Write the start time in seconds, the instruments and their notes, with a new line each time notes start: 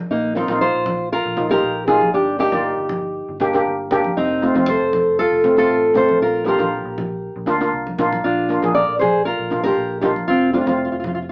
0.10 fingered electric bass A#1, nylon-string guitar A#3 D#4
0.35 steel pan A#3 D#4 F4, nylon-string guitar C4 D#4
0.48 fingered electric bass A#1, steel pan A#3 D#4 F4, high conga
0.61 nylon-string guitar F4 C5
0.75 fingered electric bass A#1
0.86 high conga, low conga
1.12 nylon-string guitar F4 A#4
1.25 fingered electric bass A#1
1.37 steel pan A#3 D#4 F4, low conga
1.49 steel pan A#3 D#4 F4, nylon-string guitar G4 A#4
1.63 fingered electric bass A#1
1.87 steel pan A#3 D#4 F4, nylon-string guitar F4 G#4, low conga
2.01 high conga
2.13 fingered electric bass G1, nylon-string guitar D4 G4
2.39 steel pan A#3 D4 G4, nylon-string guitar D#4 G4
2.52 fingered electric bass G1, steel pan A#3 F4 D5, high conga
2.78 fingered electric bass G1
2.89 high conga, low conga
3.29 fingered electric bass G1
3.40 steel pan A#3 D4 G4, low conga
3.53 steel pan A#3 D4 G4
3.66 fingered electric bass G1
3.91 steel pan A#3 D4 G4, low conga
4.04 high conga
4.17 fingered electric bass F1, nylon-string guitar C4 D#4
4.42 steel pan A3 C4 F4
4.54 fingered electric bass F1, steel pan A3 C4 F4, high conga
4.68 nylon-string guitar A4 C5
4.81 fingered electric bass F1
4.93 high conga, low conga
5.19 nylon-string guitar F4 A4
5.32 fingered electric bass F1
5.44 steel pan A3 C4 F4, low conga
5.57 steel pan A3 C4 F4, nylon-string guitar F4 A4
5.70 fingered electric bass A1
5.94 steel pan A3 C4 F4, nylon-string guitar A4 C5, low conga
6.09 high conga
6.20 fingered electric bass A#1, nylon-string guitar F4 A#4
6.45 steel pan A#3 D4 F4, nylon-string guitar G4 A#4
6.58 fingered electric bass A#1, steel pan A#3 D4 F4, high conga
6.85 fingered electric bass A#1
6.98 high conga, low conga
7.36 fingered electric bass A#1
7.46 fingered electric bass D2, steel pan A#3 D4 F4
7.60 steel pan A#3 D4 F4
7.73 fingered electric bass C2
7.87 high conga
7.98 fingered electric bass A#1, steel pan A#3 D4 F4, low conga
8.13 high conga
8.24 fingered electric bass A#1, nylon-string guitar D4 F4
8.49 steel pan A#3 D4 F4
8.62 fingered electric bass A#1, steel pan A#3 D4 G#4, high conga
8.75 nylon-string guitar A#4 D5
8.88 fingered electric bass A#1
8.99 nylon-string guitar G#4 C5, high conga, low conga
9.25 nylon-string guitar F4 A#4
9.39 fingered electric bass A#1
9.50 steel pan A#3 D4 F4, low conga
9.63 steel pan A#3 D4 F4, nylon-string guitar G4 A#4
9.77 fingered electric bass A#1
10.01 steel pan A#3 D4 F4, nylon-string guitar D#4 G4, low conga
10.16 high conga
10.28 fingered electric bass F1, nylon-string guitar C4 F4
10.53 steel pan A3 C4 F4, nylon-string guitar D4 F4
10.61 nylon-string guitar F4
10.66 fingered electric bass F1, steel pan A3 C4 F4, nylon-string guitar F4, high conga
10.77 nylon-string guitar F4
10.85 nylon-string guitar F4
10.92 fingered electric bass F1, nylon-string guitar F4
11.00 nylon-string guitar F4
11.04 nylon-string guitar F4, high conga, low conga
11.15 nylon-string guitar F4
11.22 nylon-string guitar F4